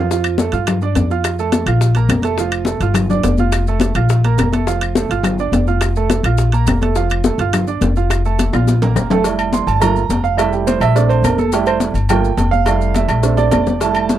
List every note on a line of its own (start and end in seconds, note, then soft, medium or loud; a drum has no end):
0.00 0.47 F2 medium
0.10 0.34 F3 medium
0.10 0.35 F4 medium
0.10 0.35 F5 medium
0.10 high bongo medium
0.10 high conga soft
0.10 maracas medium
0.24 high conga soft
0.24 high timbale medium
0.24 claves medium
0.24 maracas soft
0.38 0.51 A3 medium
0.38 0.51 A4 medium
0.38 0.51 A5 medium
0.38 high bongo medium
0.38 high conga loud
0.38 low timbale medium
0.38 maracas medium
0.52 0.92 G2 medium
0.52 0.76 F4 medium
0.52 0.76 F5 medium
0.52 0.76 F6 medium
0.52 high bongo soft
0.52 high timbale medium
0.52 maracas soft
0.67 high bongo medium
0.67 high conga soft
0.67 low conga medium
0.67 high timbale loud
0.67 claves medium
0.67 maracas medium
0.82 1.05 D4 medium
0.82 1.06 D5 medium
0.82 1.06 D6 medium
0.82 high bongo soft
0.82 high conga soft
0.82 maracas soft
0.95 1.62 F2 medium
0.95 high bongo soft
0.95 low bongo medium
0.95 high conga medium
0.95 high timbale medium
0.95 low timbale medium
0.95 maracas medium
1.10 1.34 F4 medium
1.10 1.34 F5 medium
1.10 1.34 F6 medium
1.10 high bongo soft
1.10 maracas soft
1.24 high bongo medium
1.24 high timbale medium
1.24 claves medium
1.24 maracas medium
1.39 1.62 A3 medium
1.39 1.62 A4 medium
1.39 1.63 A5 medium
1.39 high conga soft
1.39 maracas soft
1.52 high bongo medium
1.52 high conga loud
1.52 high timbale medium
1.52 low timbale medium
1.52 maracas medium
1.66 2.06 A#1 loud
1.66 1.91 F4 medium
1.66 1.91 F5 medium
1.66 1.91 F6 medium
1.66 high bongo soft
1.66 high conga soft
1.66 high timbale medium
1.66 claves medium
1.66 maracas soft
1.81 high bongo medium
1.81 high conga soft
1.81 maracas medium
1.95 2.19 A#3 medium
1.95 2.20 A#4 medium
1.95 2.20 A#5 medium
1.95 high bongo soft
1.95 high conga soft
1.95 high timbale medium
1.95 maracas soft
2.09 2.75 F1 medium
2.09 high bongo soft
2.09 low bongo medium
2.09 high conga medium
2.09 high timbale medium
2.09 low timbale medium
2.09 claves medium
2.09 maracas medium
2.22 2.36 A3 medium
2.22 2.36 A4 medium
2.22 2.36 A5 medium
2.22 high bongo soft
2.22 high conga medium
2.22 high timbale medium
2.22 maracas soft
2.37 2.62 F3 medium
2.37 2.62 F4 medium
2.37 2.62 F5 medium
2.37 high bongo medium
2.37 high conga soft
2.37 maracas medium
2.51 high conga soft
2.51 high timbale loud
2.51 claves medium
2.51 maracas soft
2.65 2.79 A3 medium
2.65 2.79 A4 medium
2.65 2.79 A5 medium
2.65 high bongo medium
2.65 high conga loud
2.65 low timbale medium
2.65 maracas medium
2.80 3.21 G1 medium
2.80 3.05 F4 medium
2.80 3.05 F5 medium
2.80 3.05 F6 medium
2.80 high bongo soft
2.80 high timbale medium
2.80 maracas soft
2.94 high bongo medium
2.94 high conga soft
2.94 low conga medium
2.94 high timbale loud
2.94 claves medium
2.94 maracas medium
3.09 3.33 D4 medium
3.09 3.34 D5 medium
3.09 3.34 D6 medium
3.09 high bongo soft
3.09 high conga soft
3.09 low conga medium
3.09 maracas soft
3.23 3.90 F1 medium
3.23 high bongo soft
3.23 low bongo medium
3.23 high conga medium
3.23 high timbale medium
3.23 low timbale medium
3.23 maracas medium
3.37 3.62 F4 medium
3.37 3.63 F5 medium
3.37 3.63 F6 medium
3.37 high bongo soft
3.37 high conga medium
3.37 maracas soft
3.52 high bongo medium
3.52 high timbale medium
3.52 claves medium
3.52 maracas medium
3.66 3.91 A3 medium
3.66 3.91 A4 medium
3.66 3.92 A5 medium
3.66 high conga soft
3.66 maracas soft
3.80 high bongo medium
3.80 high conga loud
3.80 high timbale medium
3.80 low timbale medium
3.80 maracas medium
3.95 4.35 A#1 medium
3.95 4.19 F4 medium
3.95 4.19 F5 medium
3.95 4.19 F6 medium
3.95 high bongo soft
3.95 high conga soft
3.95 high timbale medium
3.95 claves medium
3.95 maracas soft
4.09 high bongo medium
4.09 high conga soft
4.09 maracas medium
4.24 4.48 A#3 medium
4.24 4.48 A#4 medium
4.24 4.48 A#5 medium
4.24 high bongo soft
4.24 high conga soft
4.24 high timbale medium
4.24 maracas soft
4.38 5.04 F1 medium
4.38 high bongo soft
4.38 low bongo medium
4.38 high conga medium
4.38 high timbale medium
4.38 low timbale medium
4.38 claves medium
4.38 maracas medium
4.52 4.64 A3 medium
4.52 4.64 A4 medium
4.52 4.65 A5 medium
4.52 high bongo soft
4.52 high conga medium
4.52 high timbale medium
4.52 maracas soft
4.67 4.91 F3 medium
4.67 4.91 F4 medium
4.67 4.91 F5 medium
4.67 high bongo medium
4.67 high conga soft
4.67 maracas medium
4.81 high conga soft
4.81 high timbale medium
4.81 claves medium
4.81 maracas soft
4.95 5.08 A3 medium
4.95 5.08 A4 medium
4.95 5.08 A5 medium
4.95 high bongo medium
4.95 high conga loud
4.95 low timbale medium
4.95 maracas medium
5.09 5.50 G1 medium
5.09 5.34 F4 medium
5.09 5.34 F5 medium
5.09 5.34 F6 medium
5.09 high bongo soft
5.09 high timbale medium
5.09 maracas soft
5.23 high bongo medium
5.23 high conga soft
5.23 low conga medium
5.23 high timbale medium
5.23 claves medium
5.23 maracas medium
5.38 5.63 D4 medium
5.38 5.63 D5 medium
5.38 5.63 D6 medium
5.38 high bongo soft
5.38 high conga soft
5.38 maracas soft
5.52 6.18 F1 medium
5.52 high bongo soft
5.52 low bongo medium
5.52 high conga medium
5.52 high timbale medium
5.52 low timbale medium
5.52 maracas medium
5.67 5.91 F4 medium
5.67 5.91 F5 medium
5.67 5.91 F6 medium
5.67 high bongo soft
5.67 maracas soft
5.81 high bongo medium
5.81 high conga soft
5.81 high timbale medium
5.81 claves medium
5.81 maracas medium
5.96 6.20 A3 medium
5.96 6.20 A4 medium
5.96 6.20 A5 medium
5.96 high conga soft
5.96 maracas soft
6.10 high bongo medium
6.10 high conga loud
6.10 high timbale medium
6.10 low timbale medium
6.10 maracas medium
6.23 6.64 A#1 loud
6.23 6.49 F4 medium
6.23 6.49 F5 medium
6.23 6.49 F6 medium
6.23 high bongo soft
6.23 high conga soft
6.23 high timbale medium
6.23 claves medium
6.23 maracas soft
6.38 high bongo medium
6.38 high conga soft
6.38 maracas medium
6.52 6.77 A#3 medium
6.52 6.77 A#4 medium
6.52 6.77 A#5 medium
6.52 high bongo soft
6.52 high conga soft
6.52 high timbale medium
6.52 maracas soft
6.66 7.33 F1 medium
6.66 high bongo soft
6.66 low bongo medium
6.66 high conga medium
6.66 high timbale medium
6.66 low timbale medium
6.66 claves medium
6.66 maracas medium
6.81 6.93 A3 medium
6.81 6.94 A4 medium
6.81 6.94 A5 medium
6.81 high bongo soft
6.81 high conga medium
6.81 high timbale medium
6.81 maracas soft
6.95 7.19 F3 medium
6.95 7.19 F4 medium
6.95 7.20 F5 medium
6.95 high bongo medium
6.95 maracas medium
7.10 high conga soft
7.10 high timbale medium
7.10 claves medium
7.10 maracas soft
7.24 7.37 A3 medium
7.24 7.37 A4 medium
7.24 7.37 A5 medium
7.24 high bongo medium
7.24 high conga loud
7.24 low timbale medium
7.24 maracas medium
7.38 7.78 G1 medium
7.38 7.63 F4 medium
7.38 7.63 F5 medium
7.38 7.63 F6 medium
7.38 high bongo soft
7.38 high timbale medium
7.38 maracas soft
7.53 high bongo medium
7.53 high conga soft
7.53 low conga medium
7.53 high timbale loud
7.53 claves medium
7.53 maracas medium
7.67 7.91 D4 medium
7.67 7.91 D5 medium
7.67 7.91 D6 medium
7.67 high bongo soft
7.67 high conga soft
7.67 maracas soft
7.81 8.47 F1 medium
7.81 high bongo soft
7.81 low bongo medium
7.81 high conga medium
7.81 high timbale medium
7.81 low timbale medium
7.81 maracas medium
7.96 8.20 F4 medium
7.96 8.20 F5 medium
7.96 8.20 F6 medium
7.96 high bongo soft
7.96 maracas soft
8.10 high bongo medium
8.10 high conga soft
8.10 high timbale medium
8.10 claves medium
8.10 maracas medium
8.25 8.49 A3 medium
8.25 8.49 A4 medium
8.25 8.49 A5 medium
8.25 high conga soft
8.25 maracas soft
8.39 high bongo medium
8.39 high conga loud
8.39 high timbale medium
8.39 low timbale medium
8.39 maracas medium
8.53 8.93 A#1 loud
8.53 8.77 F4 medium
8.53 8.77 F5 medium
8.53 8.77 F6 medium
8.53 high bongo soft
8.53 high conga medium
8.53 high timbale medium
8.53 claves medium
8.53 maracas soft
8.67 high bongo medium
8.67 high conga loud
8.67 maracas medium
8.82 9.05 A#3 medium
8.82 9.06 A#4 medium
8.82 9.06 A#5 medium
8.82 low conga medium
8.82 low timbale loud
8.82 maracas soft
8.96 9.62 F1 medium
8.96 low bongo loud
8.96 low timbale medium
8.96 claves medium
8.96 maracas medium
9.10 9.22 A3 medium
9.10 9.22 A4 medium
9.10 9.22 A5 medium
9.10 low bongo medium
9.10 low conga medium
9.10 low timbale loud
9.10 maracas soft
9.24 9.79 G3 medium
9.24 9.79 A3 medium
9.24 9.80 E4 medium
9.24 cowbell loud
9.24 low agogo medium
9.24 maracas medium
9.39 high conga soft
9.39 low agogo loud
9.39 claves medium
9.39 maracas soft
9.53 9.67 C6 medium
9.53 cowbell medium
9.53 high conga loud
9.53 low timbale medium
9.53 maracas medium
9.67 10.07 G1 medium
9.67 9.81 A5 medium
9.67 low agogo medium
9.67 maracas soft
9.80 10.00 A3 medium
9.80 10.00 A#3 medium
9.80 10.01 F4 medium
9.80 10.21 A#5 medium
9.80 cowbell loud
9.80 high conga soft
9.80 low conga medium
9.80 low agogo loud
9.80 claves medium
9.80 maracas medium
9.96 high conga soft
9.96 maracas soft
10.09 10.76 F1 medium
10.09 cowbell medium
10.09 high conga medium
10.09 low timbale medium
10.09 low agogo medium
10.09 maracas medium
10.24 10.38 F5 medium
10.24 maracas soft
10.37 10.92 G3 medium
10.37 10.93 A3 soft
10.37 10.93 E4 medium
10.37 10.52 E5 medium
10.37 cowbell loud
10.37 high conga soft
10.37 low agogo loud
10.37 claves medium
10.37 maracas medium
10.53 10.67 G4 medium
10.53 high conga soft
10.53 maracas soft
10.67 10.81 C5 medium
10.67 cowbell medium
10.67 high conga loud
10.67 low timbale medium
10.67 low agogo medium
10.67 maracas medium
10.80 11.21 A#1 medium
10.80 10.95 E5 loud
10.80 cowbell medium
10.80 low agogo loud
10.80 claves medium
10.80 maracas soft
10.95 11.36 A3 medium
10.95 11.37 C4 medium
10.95 11.37 D4 medium
10.95 11.10 D5 medium
10.95 cowbell loud
10.95 high conga soft
10.95 maracas medium
11.09 11.24 C5 medium
11.09 high conga soft
11.09 low agogo medium
11.09 maracas soft
11.23 11.89 F1 medium
11.23 11.38 A#4 medium
11.23 cowbell medium
11.23 high conga medium
11.23 low timbale medium
11.23 low agogo loud
11.23 claves medium
11.23 maracas medium
11.38 11.53 A4 medium
11.38 high conga medium
11.38 maracas soft
11.52 11.94 G3 medium
11.52 11.94 A3 medium
11.52 11.94 E4 medium
11.52 11.67 G4 medium
11.52 cowbell loud
11.52 high conga soft
11.52 low agogo medium
11.52 maracas medium
11.66 11.76 C5 medium
11.66 high conga soft
11.66 low agogo loud
11.66 claves medium
11.66 maracas soft
11.80 cowbell medium
11.80 high conga loud
11.80 low timbale medium
11.80 maracas medium
11.94 12.35 G1 medium
11.94 low agogo medium
11.94 maracas soft
12.09 12.29 A3 medium
12.09 12.29 A#3 medium
12.09 12.29 F4 medium
12.09 12.50 G5 medium
12.09 cowbell loud
12.09 high conga soft
12.09 low conga medium
12.09 low agogo loud
12.09 claves medium
12.09 maracas medium
12.24 high conga soft
12.24 maracas soft
12.37 13.04 F1 medium
12.37 cowbell medium
12.37 high conga medium
12.37 low timbale medium
12.37 low agogo medium
12.37 maracas medium
12.51 12.92 F5 loud
12.51 high conga medium
12.51 maracas soft
12.65 13.21 G3 medium
12.65 13.21 A3 soft
12.65 13.21 E4 medium
12.65 cowbell loud
12.65 high conga soft
12.65 low agogo loud
12.65 claves medium
12.65 maracas medium
12.81 high conga soft
12.81 maracas soft
12.94 13.35 E5 medium
12.94 cowbell medium
12.94 high conga loud
12.94 low timbale medium
12.94 low agogo medium
12.94 maracas medium
13.08 13.49 A#1 medium
13.08 cowbell medium
13.08 high conga soft
13.08 low agogo loud
13.08 claves medium
13.08 maracas soft
13.22 13.64 A3 medium
13.22 13.64 C4 soft
13.22 13.65 D4 medium
13.22 cowbell loud
13.22 high conga soft
13.22 maracas medium
13.37 13.78 D5 medium
13.37 high bongo medium
13.37 high conga soft
13.37 low agogo medium
13.37 maracas soft
13.51 14.18 F1 medium
13.51 cowbell medium
13.51 high bongo medium
13.51 high conga medium
13.51 low timbale medium
13.51 low agogo loud
13.51 claves medium
13.51 maracas medium
13.67 low bongo loud
13.67 high conga medium
13.67 maracas soft
13.80 14.19 G3 medium
13.80 14.19 A3 medium
13.80 14.19 E4 medium
13.80 14.19 A5 medium
13.80 cowbell loud
13.80 low agogo medium
13.80 maracas medium
13.95 high conga soft
13.95 low agogo loud
13.95 claves medium
13.95 maracas soft
14.09 cowbell medium
14.09 high conga loud
14.09 low timbale medium
14.09 maracas medium